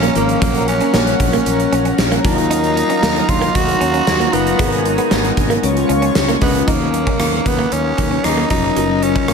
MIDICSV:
0, 0, Header, 1, 8, 480
1, 0, Start_track
1, 0, Tempo, 521739
1, 385, Time_signature, 4, 2, 24, 8
1, 8588, End_track
2, 0, Start_track
2, 0, Title_t, "Analog synth pad"
2, 0, Program_c, 0, 89
2, 0, Note_on_c, 0, 61, 81
2, 0, Note_on_c, 0, 70, 72
2, 0, Note_on_c, 0, 77, 76
2, 0, Note_on_c, 0, 82, 81
2, 350, Note_off_c, 0, 82, 0
2, 366, Note_off_c, 0, 77, 0
2, 386, Note_on_c, 0, 78, 77
2, 386, Note_on_c, 0, 82, 93
2, 2029, Note_off_c, 0, 61, 0
2, 2029, Note_off_c, 0, 70, 0
2, 2049, Note_off_c, 0, 78, 0
2, 2067, Note_on_c, 0, 54, 67
2, 2067, Note_on_c, 0, 63, 80
2, 2067, Note_on_c, 0, 77, 72
2, 4204, Note_off_c, 0, 54, 0
2, 4204, Note_off_c, 0, 77, 0
2, 4205, Note_off_c, 0, 63, 0
2, 4225, Note_on_c, 0, 59, 73
2, 4225, Note_on_c, 0, 63, 76
2, 4225, Note_on_c, 0, 80, 72
2, 5149, Note_off_c, 0, 82, 0
2, 5176, Note_off_c, 0, 59, 0
2, 5176, Note_off_c, 0, 63, 0
2, 5183, Note_on_c, 0, 85, 85
2, 5184, Note_on_c, 0, 65, 80
2, 5184, Note_on_c, 0, 73, 74
2, 6126, Note_off_c, 0, 80, 0
2, 6134, Note_off_c, 0, 85, 0
2, 6135, Note_off_c, 0, 65, 0
2, 6135, Note_off_c, 0, 73, 0
2, 8588, End_track
3, 0, Start_track
3, 0, Title_t, "Tenor saxophone"
3, 0, Program_c, 1, 66
3, 0, Note_on_c, 1, 61, 97
3, 112, Note_off_c, 1, 61, 0
3, 148, Note_on_c, 1, 58, 85
3, 370, Note_off_c, 1, 58, 0
3, 388, Note_on_c, 1, 58, 90
3, 610, Note_off_c, 1, 58, 0
3, 628, Note_on_c, 1, 61, 88
3, 850, Note_off_c, 1, 61, 0
3, 868, Note_on_c, 1, 61, 85
3, 1790, Note_off_c, 1, 61, 0
3, 2069, Note_on_c, 1, 63, 101
3, 3027, Note_on_c, 1, 65, 107
3, 3041, Note_off_c, 1, 63, 0
3, 3269, Note_on_c, 1, 66, 112
3, 3282, Note_off_c, 1, 65, 0
3, 3988, Note_on_c, 1, 59, 92
3, 4002, Note_off_c, 1, 66, 0
3, 4467, Note_off_c, 1, 59, 0
3, 5905, Note_on_c, 1, 59, 88
3, 6147, Note_on_c, 1, 58, 88
3, 6161, Note_off_c, 1, 59, 0
3, 6864, Note_on_c, 1, 59, 90
3, 6877, Note_off_c, 1, 58, 0
3, 7104, Note_on_c, 1, 61, 93
3, 7117, Note_off_c, 1, 59, 0
3, 7582, Note_on_c, 1, 63, 91
3, 7596, Note_off_c, 1, 61, 0
3, 7817, Note_off_c, 1, 63, 0
3, 7823, Note_on_c, 1, 63, 104
3, 8303, Note_on_c, 1, 61, 96
3, 8317, Note_off_c, 1, 63, 0
3, 8588, Note_off_c, 1, 61, 0
3, 8588, End_track
4, 0, Start_track
4, 0, Title_t, "Tine electric piano"
4, 0, Program_c, 2, 4
4, 0, Control_c, 2, 64, 127
4, 0, Note_on_c, 2, 53, 67
4, 0, Note_on_c, 2, 58, 63
4, 0, Note_on_c, 2, 61, 63
4, 0, Note_on_c, 2, 70, 78
4, 137, Note_off_c, 2, 53, 0
4, 137, Note_on_c, 2, 53, 77
4, 140, Note_off_c, 2, 58, 0
4, 140, Note_on_c, 2, 58, 71
4, 144, Note_off_c, 2, 61, 0
4, 144, Note_on_c, 2, 61, 68
4, 149, Note_off_c, 2, 70, 0
4, 149, Note_on_c, 2, 70, 82
4, 288, Note_off_c, 2, 53, 0
4, 290, Note_off_c, 2, 58, 0
4, 292, Note_off_c, 2, 61, 0
4, 294, Note_off_c, 2, 70, 0
4, 378, Note_on_c, 2, 54, 73
4, 382, Note_on_c, 2, 58, 65
4, 386, Note_on_c, 2, 61, 64
4, 390, Note_on_c, 2, 70, 81
4, 397, Control_c, 2, 64, 0
4, 552, Control_c, 2, 64, 127
4, 971, Note_off_c, 2, 54, 0
4, 973, Note_off_c, 2, 58, 0
4, 975, Note_off_c, 2, 61, 0
4, 977, Note_off_c, 2, 70, 0
4, 2059, Note_on_c, 2, 54, 82
4, 2062, Note_on_c, 2, 63, 73
4, 2066, Note_on_c, 2, 65, 76
4, 2070, Note_on_c, 2, 70, 89
4, 2078, Control_c, 2, 64, 0
4, 2216, Control_c, 2, 64, 127
4, 2830, Note_off_c, 2, 54, 0
4, 2831, Note_off_c, 2, 63, 0
4, 2834, Note_off_c, 2, 65, 0
4, 2835, Note_off_c, 2, 70, 0
4, 3978, Note_on_c, 2, 54, 75
4, 3982, Note_on_c, 2, 63, 72
4, 3986, Note_on_c, 2, 65, 69
4, 3990, Note_on_c, 2, 70, 85
4, 4129, Note_off_c, 2, 54, 0
4, 4131, Note_off_c, 2, 63, 0
4, 4133, Note_off_c, 2, 65, 0
4, 4135, Note_off_c, 2, 70, 0
4, 4218, Note_on_c, 2, 56, 72
4, 4222, Note_on_c, 2, 59, 63
4, 4226, Note_on_c, 2, 63, 65
4, 4230, Note_on_c, 2, 70, 78
4, 4238, Control_c, 2, 64, 0
4, 4380, Control_c, 2, 64, 127
4, 4812, Note_off_c, 2, 56, 0
4, 4813, Note_off_c, 2, 59, 0
4, 4815, Note_off_c, 2, 63, 0
4, 4817, Note_off_c, 2, 70, 0
4, 5179, Note_on_c, 2, 56, 94
4, 5182, Note_on_c, 2, 61, 89
4, 5185, Note_on_c, 2, 65, 85
4, 5190, Note_on_c, 2, 73, 99
4, 5196, Control_c, 2, 64, 0
4, 5376, Control_c, 2, 64, 127
4, 5758, Note_off_c, 2, 56, 0
4, 5759, Note_off_c, 2, 61, 0
4, 5761, Note_off_c, 2, 65, 0
4, 5764, Note_off_c, 2, 73, 0
4, 5896, Note_on_c, 2, 56, 88
4, 5900, Note_on_c, 2, 61, 78
4, 5903, Note_on_c, 2, 65, 84
4, 5907, Note_on_c, 2, 75, 100
4, 6048, Note_off_c, 2, 56, 0
4, 6050, Note_off_c, 2, 61, 0
4, 6052, Note_off_c, 2, 65, 0
4, 6053, Note_off_c, 2, 75, 0
4, 6138, Note_on_c, 2, 54, 66
4, 6142, Note_on_c, 2, 61, 58
4, 6146, Note_on_c, 2, 63, 60
4, 6150, Note_on_c, 2, 70, 74
4, 6158, Control_c, 2, 64, 0
4, 6302, Control_c, 2, 64, 127
4, 6731, Note_off_c, 2, 54, 0
4, 6733, Note_off_c, 2, 61, 0
4, 6735, Note_off_c, 2, 63, 0
4, 6737, Note_off_c, 2, 70, 0
4, 7338, Note_on_c, 2, 54, 71
4, 7341, Note_on_c, 2, 61, 62
4, 7346, Note_on_c, 2, 63, 63
4, 7349, Note_on_c, 2, 70, 73
4, 7636, Note_off_c, 2, 54, 0
4, 7638, Note_off_c, 2, 61, 0
4, 7640, Note_off_c, 2, 63, 0
4, 7642, Note_off_c, 2, 70, 0
4, 7820, Note_on_c, 2, 54, 67
4, 7824, Note_on_c, 2, 61, 57
4, 7828, Note_on_c, 2, 63, 58
4, 7831, Note_on_c, 2, 65, 72
4, 7970, Note_off_c, 2, 54, 0
4, 7972, Note_off_c, 2, 61, 0
4, 7974, Note_off_c, 2, 63, 0
4, 7975, Note_off_c, 2, 65, 0
4, 8060, Note_on_c, 2, 54, 66
4, 8063, Note_on_c, 2, 61, 56
4, 8067, Note_on_c, 2, 65, 59
4, 8071, Note_on_c, 2, 70, 73
4, 8076, Control_c, 2, 64, 0
4, 8208, Control_c, 2, 64, 127
4, 8588, Note_off_c, 2, 54, 0
4, 8588, Note_off_c, 2, 61, 0
4, 8588, Note_off_c, 2, 65, 0
4, 8588, Note_off_c, 2, 70, 0
4, 8588, End_track
5, 0, Start_track
5, 0, Title_t, "Clean electric guitar"
5, 0, Program_c, 3, 27
5, 23, Note_on_c, 3, 58, 77
5, 107, Note_off_c, 3, 58, 0
5, 143, Note_on_c, 3, 53, 75
5, 227, Note_off_c, 3, 53, 0
5, 384, Note_on_c, 3, 54, 86
5, 467, Note_off_c, 3, 54, 0
5, 748, Note_on_c, 3, 61, 70
5, 830, Note_off_c, 3, 61, 0
5, 868, Note_on_c, 3, 58, 85
5, 950, Note_off_c, 3, 58, 0
5, 1227, Note_on_c, 3, 58, 82
5, 1309, Note_off_c, 3, 58, 0
5, 1587, Note_on_c, 3, 61, 83
5, 1669, Note_off_c, 3, 61, 0
5, 1708, Note_on_c, 3, 61, 73
5, 1790, Note_off_c, 3, 61, 0
5, 1948, Note_on_c, 3, 58, 77
5, 2030, Note_off_c, 3, 58, 0
5, 2065, Note_on_c, 3, 54, 71
5, 2148, Note_off_c, 3, 54, 0
5, 2305, Note_on_c, 3, 63, 85
5, 2388, Note_off_c, 3, 63, 0
5, 2666, Note_on_c, 3, 61, 71
5, 2749, Note_off_c, 3, 61, 0
5, 2784, Note_on_c, 3, 58, 81
5, 2867, Note_off_c, 3, 58, 0
5, 3143, Note_on_c, 3, 58, 87
5, 3226, Note_off_c, 3, 58, 0
5, 3503, Note_on_c, 3, 61, 77
5, 3587, Note_off_c, 3, 61, 0
5, 3623, Note_on_c, 3, 61, 76
5, 3707, Note_off_c, 3, 61, 0
5, 3863, Note_on_c, 3, 58, 76
5, 3947, Note_off_c, 3, 58, 0
5, 3982, Note_on_c, 3, 54, 79
5, 4066, Note_off_c, 3, 54, 0
5, 4221, Note_on_c, 3, 56, 85
5, 4306, Note_off_c, 3, 56, 0
5, 4585, Note_on_c, 3, 59, 75
5, 4668, Note_off_c, 3, 59, 0
5, 4702, Note_on_c, 3, 58, 84
5, 4786, Note_off_c, 3, 58, 0
5, 5060, Note_on_c, 3, 58, 80
5, 5145, Note_off_c, 3, 58, 0
5, 5420, Note_on_c, 3, 61, 79
5, 5505, Note_off_c, 3, 61, 0
5, 5541, Note_on_c, 3, 61, 77
5, 5625, Note_off_c, 3, 61, 0
5, 5782, Note_on_c, 3, 58, 77
5, 5866, Note_off_c, 3, 58, 0
5, 5903, Note_on_c, 3, 56, 75
5, 5986, Note_off_c, 3, 56, 0
5, 6143, Note_on_c, 3, 63, 78
5, 6227, Note_off_c, 3, 63, 0
5, 6503, Note_on_c, 3, 61, 65
5, 6587, Note_off_c, 3, 61, 0
5, 6623, Note_on_c, 3, 58, 81
5, 6707, Note_off_c, 3, 58, 0
5, 6981, Note_on_c, 3, 58, 75
5, 7065, Note_off_c, 3, 58, 0
5, 7340, Note_on_c, 3, 61, 67
5, 7424, Note_off_c, 3, 61, 0
5, 7461, Note_on_c, 3, 61, 67
5, 7545, Note_off_c, 3, 61, 0
5, 7704, Note_on_c, 3, 58, 73
5, 7787, Note_off_c, 3, 58, 0
5, 7822, Note_on_c, 3, 54, 65
5, 7906, Note_off_c, 3, 54, 0
5, 8063, Note_on_c, 3, 54, 74
5, 8147, Note_off_c, 3, 54, 0
5, 8422, Note_on_c, 3, 61, 67
5, 8506, Note_off_c, 3, 61, 0
5, 8541, Note_on_c, 3, 58, 81
5, 8588, Note_off_c, 3, 58, 0
5, 8588, End_track
6, 0, Start_track
6, 0, Title_t, "Fretless electric bass"
6, 0, Program_c, 4, 35
6, 144, Note_on_c, 4, 32, 95
6, 317, Note_off_c, 4, 32, 0
6, 384, Note_on_c, 4, 34, 102
6, 730, Note_off_c, 4, 34, 0
6, 865, Note_on_c, 4, 34, 95
6, 1038, Note_off_c, 4, 34, 0
6, 1103, Note_on_c, 4, 34, 95
6, 1276, Note_off_c, 4, 34, 0
6, 1344, Note_on_c, 4, 34, 102
6, 1517, Note_off_c, 4, 34, 0
6, 1584, Note_on_c, 4, 34, 100
6, 1757, Note_off_c, 4, 34, 0
6, 1823, Note_on_c, 4, 34, 102
6, 1997, Note_off_c, 4, 34, 0
6, 2066, Note_on_c, 4, 39, 106
6, 2584, Note_off_c, 4, 39, 0
6, 2783, Note_on_c, 4, 39, 97
6, 2956, Note_off_c, 4, 39, 0
6, 3024, Note_on_c, 4, 39, 104
6, 3197, Note_off_c, 4, 39, 0
6, 3267, Note_on_c, 4, 39, 98
6, 3439, Note_off_c, 4, 39, 0
6, 3504, Note_on_c, 4, 39, 101
6, 3677, Note_off_c, 4, 39, 0
6, 3743, Note_on_c, 4, 39, 105
6, 3917, Note_off_c, 4, 39, 0
6, 3983, Note_on_c, 4, 30, 89
6, 4156, Note_off_c, 4, 30, 0
6, 4225, Note_on_c, 4, 32, 109
6, 4570, Note_off_c, 4, 32, 0
6, 4701, Note_on_c, 4, 32, 97
6, 4875, Note_off_c, 4, 32, 0
6, 4943, Note_on_c, 4, 32, 97
6, 5116, Note_off_c, 4, 32, 0
6, 5181, Note_on_c, 4, 37, 95
6, 5355, Note_off_c, 4, 37, 0
6, 5422, Note_on_c, 4, 37, 96
6, 5596, Note_off_c, 4, 37, 0
6, 5663, Note_on_c, 4, 37, 95
6, 5836, Note_off_c, 4, 37, 0
6, 5903, Note_on_c, 4, 37, 88
6, 6077, Note_off_c, 4, 37, 0
6, 6143, Note_on_c, 4, 39, 97
6, 6489, Note_off_c, 4, 39, 0
6, 6622, Note_on_c, 4, 39, 93
6, 6796, Note_off_c, 4, 39, 0
6, 6861, Note_on_c, 4, 39, 92
6, 7035, Note_off_c, 4, 39, 0
6, 7102, Note_on_c, 4, 39, 93
6, 7276, Note_off_c, 4, 39, 0
6, 7344, Note_on_c, 4, 39, 88
6, 7517, Note_off_c, 4, 39, 0
6, 7583, Note_on_c, 4, 39, 91
6, 7757, Note_off_c, 4, 39, 0
6, 7824, Note_on_c, 4, 29, 89
6, 7997, Note_off_c, 4, 29, 0
6, 8064, Note_on_c, 4, 30, 94
6, 8410, Note_off_c, 4, 30, 0
6, 8545, Note_on_c, 4, 30, 93
6, 8588, Note_off_c, 4, 30, 0
6, 8588, End_track
7, 0, Start_track
7, 0, Title_t, "Muted clean electric guitar strokes"
7, 626, Note_on_c, 9, 29, 45
7, 718, Note_off_c, 9, 29, 0
7, 990, Note_on_c, 9, 29, 43
7, 1082, Note_off_c, 9, 29, 0
7, 1351, Note_on_c, 9, 29, 44
7, 1443, Note_off_c, 9, 29, 0
7, 1827, Note_on_c, 9, 29, 47
7, 1919, Note_off_c, 9, 29, 0
7, 2545, Note_on_c, 9, 29, 47
7, 2637, Note_off_c, 9, 29, 0
7, 2906, Note_on_c, 9, 29, 44
7, 2998, Note_off_c, 9, 29, 0
7, 3264, Note_on_c, 9, 29, 43
7, 3356, Note_off_c, 9, 29, 0
7, 3743, Note_on_c, 9, 29, 47
7, 3835, Note_off_c, 9, 29, 0
7, 4464, Note_on_c, 9, 29, 48
7, 4556, Note_off_c, 9, 29, 0
7, 4821, Note_on_c, 9, 29, 43
7, 4913, Note_off_c, 9, 29, 0
7, 5183, Note_on_c, 9, 29, 44
7, 5275, Note_off_c, 9, 29, 0
7, 5662, Note_on_c, 9, 29, 46
7, 5754, Note_off_c, 9, 29, 0
7, 6384, Note_on_c, 9, 29, 43
7, 6476, Note_off_c, 9, 29, 0
7, 6742, Note_on_c, 9, 29, 42
7, 6834, Note_off_c, 9, 29, 0
7, 7102, Note_on_c, 9, 29, 40
7, 7194, Note_off_c, 9, 29, 0
7, 7584, Note_on_c, 9, 29, 41
7, 7676, Note_off_c, 9, 29, 0
7, 8303, Note_on_c, 9, 29, 42
7, 8395, Note_off_c, 9, 29, 0
7, 8588, End_track
8, 0, Start_track
8, 0, Title_t, "Drums"
8, 26, Note_on_c, 9, 42, 48
8, 118, Note_off_c, 9, 42, 0
8, 142, Note_on_c, 9, 42, 85
8, 234, Note_off_c, 9, 42, 0
8, 266, Note_on_c, 9, 42, 50
8, 358, Note_off_c, 9, 42, 0
8, 384, Note_on_c, 9, 36, 113
8, 384, Note_on_c, 9, 42, 97
8, 476, Note_off_c, 9, 36, 0
8, 476, Note_off_c, 9, 42, 0
8, 502, Note_on_c, 9, 42, 50
8, 594, Note_off_c, 9, 42, 0
8, 625, Note_on_c, 9, 42, 74
8, 717, Note_off_c, 9, 42, 0
8, 740, Note_on_c, 9, 42, 49
8, 832, Note_off_c, 9, 42, 0
8, 862, Note_on_c, 9, 38, 116
8, 865, Note_on_c, 9, 54, 62
8, 954, Note_off_c, 9, 38, 0
8, 957, Note_off_c, 9, 54, 0
8, 985, Note_on_c, 9, 42, 49
8, 1077, Note_off_c, 9, 42, 0
8, 1103, Note_on_c, 9, 36, 87
8, 1107, Note_on_c, 9, 42, 68
8, 1195, Note_off_c, 9, 36, 0
8, 1199, Note_off_c, 9, 42, 0
8, 1226, Note_on_c, 9, 42, 49
8, 1318, Note_off_c, 9, 42, 0
8, 1346, Note_on_c, 9, 42, 90
8, 1438, Note_off_c, 9, 42, 0
8, 1469, Note_on_c, 9, 42, 52
8, 1561, Note_off_c, 9, 42, 0
8, 1588, Note_on_c, 9, 42, 71
8, 1680, Note_off_c, 9, 42, 0
8, 1704, Note_on_c, 9, 42, 52
8, 1796, Note_off_c, 9, 42, 0
8, 1824, Note_on_c, 9, 54, 61
8, 1827, Note_on_c, 9, 38, 105
8, 1916, Note_off_c, 9, 54, 0
8, 1919, Note_off_c, 9, 38, 0
8, 1949, Note_on_c, 9, 42, 46
8, 2041, Note_off_c, 9, 42, 0
8, 2066, Note_on_c, 9, 36, 110
8, 2066, Note_on_c, 9, 42, 85
8, 2158, Note_off_c, 9, 36, 0
8, 2158, Note_off_c, 9, 42, 0
8, 2191, Note_on_c, 9, 42, 50
8, 2283, Note_off_c, 9, 42, 0
8, 2309, Note_on_c, 9, 42, 95
8, 2401, Note_off_c, 9, 42, 0
8, 2427, Note_on_c, 9, 42, 49
8, 2519, Note_off_c, 9, 42, 0
8, 2551, Note_on_c, 9, 42, 79
8, 2643, Note_off_c, 9, 42, 0
8, 2666, Note_on_c, 9, 42, 51
8, 2758, Note_off_c, 9, 42, 0
8, 2788, Note_on_c, 9, 38, 120
8, 2791, Note_on_c, 9, 54, 68
8, 2880, Note_off_c, 9, 38, 0
8, 2883, Note_off_c, 9, 54, 0
8, 2909, Note_on_c, 9, 42, 46
8, 3001, Note_off_c, 9, 42, 0
8, 3025, Note_on_c, 9, 36, 91
8, 3030, Note_on_c, 9, 42, 68
8, 3117, Note_off_c, 9, 36, 0
8, 3122, Note_off_c, 9, 42, 0
8, 3148, Note_on_c, 9, 42, 50
8, 3240, Note_off_c, 9, 42, 0
8, 3268, Note_on_c, 9, 36, 95
8, 3268, Note_on_c, 9, 42, 86
8, 3360, Note_off_c, 9, 36, 0
8, 3360, Note_off_c, 9, 42, 0
8, 3390, Note_on_c, 9, 42, 55
8, 3482, Note_off_c, 9, 42, 0
8, 3508, Note_on_c, 9, 42, 67
8, 3600, Note_off_c, 9, 42, 0
8, 3625, Note_on_c, 9, 42, 52
8, 3717, Note_off_c, 9, 42, 0
8, 3745, Note_on_c, 9, 54, 62
8, 3748, Note_on_c, 9, 38, 110
8, 3837, Note_off_c, 9, 54, 0
8, 3840, Note_off_c, 9, 38, 0
8, 3869, Note_on_c, 9, 42, 47
8, 3961, Note_off_c, 9, 42, 0
8, 3985, Note_on_c, 9, 42, 81
8, 4077, Note_off_c, 9, 42, 0
8, 4110, Note_on_c, 9, 42, 51
8, 4202, Note_off_c, 9, 42, 0
8, 4226, Note_on_c, 9, 36, 120
8, 4227, Note_on_c, 9, 42, 92
8, 4318, Note_off_c, 9, 36, 0
8, 4319, Note_off_c, 9, 42, 0
8, 4346, Note_on_c, 9, 42, 53
8, 4438, Note_off_c, 9, 42, 0
8, 4466, Note_on_c, 9, 42, 75
8, 4558, Note_off_c, 9, 42, 0
8, 4582, Note_on_c, 9, 42, 52
8, 4674, Note_off_c, 9, 42, 0
8, 4702, Note_on_c, 9, 38, 120
8, 4705, Note_on_c, 9, 54, 64
8, 4794, Note_off_c, 9, 38, 0
8, 4797, Note_off_c, 9, 54, 0
8, 4825, Note_on_c, 9, 42, 45
8, 4917, Note_off_c, 9, 42, 0
8, 4943, Note_on_c, 9, 36, 88
8, 4947, Note_on_c, 9, 42, 72
8, 5035, Note_off_c, 9, 36, 0
8, 5039, Note_off_c, 9, 42, 0
8, 5063, Note_on_c, 9, 42, 48
8, 5155, Note_off_c, 9, 42, 0
8, 5183, Note_on_c, 9, 42, 87
8, 5275, Note_off_c, 9, 42, 0
8, 5306, Note_on_c, 9, 42, 54
8, 5398, Note_off_c, 9, 42, 0
8, 5423, Note_on_c, 9, 42, 67
8, 5515, Note_off_c, 9, 42, 0
8, 5541, Note_on_c, 9, 42, 50
8, 5633, Note_off_c, 9, 42, 0
8, 5659, Note_on_c, 9, 54, 62
8, 5662, Note_on_c, 9, 38, 110
8, 5751, Note_off_c, 9, 54, 0
8, 5754, Note_off_c, 9, 38, 0
8, 5783, Note_on_c, 9, 42, 46
8, 5875, Note_off_c, 9, 42, 0
8, 5900, Note_on_c, 9, 46, 85
8, 5904, Note_on_c, 9, 36, 85
8, 5992, Note_off_c, 9, 46, 0
8, 5996, Note_off_c, 9, 36, 0
8, 6025, Note_on_c, 9, 42, 47
8, 6117, Note_off_c, 9, 42, 0
8, 6143, Note_on_c, 9, 36, 108
8, 6143, Note_on_c, 9, 42, 81
8, 6235, Note_off_c, 9, 36, 0
8, 6235, Note_off_c, 9, 42, 0
8, 6383, Note_on_c, 9, 42, 68
8, 6475, Note_off_c, 9, 42, 0
8, 6503, Note_on_c, 9, 36, 81
8, 6595, Note_off_c, 9, 36, 0
8, 6620, Note_on_c, 9, 37, 109
8, 6623, Note_on_c, 9, 42, 79
8, 6712, Note_off_c, 9, 37, 0
8, 6715, Note_off_c, 9, 42, 0
8, 6862, Note_on_c, 9, 36, 87
8, 6865, Note_on_c, 9, 42, 62
8, 6954, Note_off_c, 9, 36, 0
8, 6957, Note_off_c, 9, 42, 0
8, 7101, Note_on_c, 9, 42, 86
8, 7193, Note_off_c, 9, 42, 0
8, 7343, Note_on_c, 9, 42, 61
8, 7345, Note_on_c, 9, 36, 79
8, 7435, Note_off_c, 9, 42, 0
8, 7437, Note_off_c, 9, 36, 0
8, 7583, Note_on_c, 9, 42, 80
8, 7584, Note_on_c, 9, 37, 95
8, 7675, Note_off_c, 9, 42, 0
8, 7676, Note_off_c, 9, 37, 0
8, 7822, Note_on_c, 9, 42, 78
8, 7825, Note_on_c, 9, 36, 78
8, 7914, Note_off_c, 9, 42, 0
8, 7917, Note_off_c, 9, 36, 0
8, 8063, Note_on_c, 9, 42, 88
8, 8155, Note_off_c, 9, 42, 0
8, 8304, Note_on_c, 9, 42, 69
8, 8396, Note_off_c, 9, 42, 0
8, 8424, Note_on_c, 9, 36, 84
8, 8516, Note_off_c, 9, 36, 0
8, 8541, Note_on_c, 9, 37, 111
8, 8543, Note_on_c, 9, 42, 78
8, 8588, Note_off_c, 9, 37, 0
8, 8588, Note_off_c, 9, 42, 0
8, 8588, End_track
0, 0, End_of_file